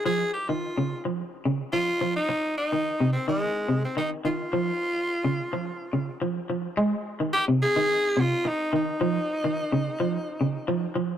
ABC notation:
X:1
M:4/4
L:1/16
Q:"Swing 16ths" 1/4=107
K:Dblyd
V:1 name="Tenor saxophone"
A2 G F4 z4 z F3 E- | E2 E4 C A,4 C E2 F2- | F12 z4 | z4 G2 A4 F2 E2 E2- |
E12- E2 z2 |]
V:2 name="Clean electric guitar" clef=bass
F,2 z E,2 D,2 F,2 z D,2 F,2 F,2 | z3 E,2 C,2 E,2 z C,2 E,2 E,2 | F,2 z3 D,2 F,2 z D,2 F,2 F,2 | A,2 z E,2 C,2 E,2 z C,2 z2 E,2 |
F,2 z E,2 D,2 F,2 z D,2 F,2 F,2 |]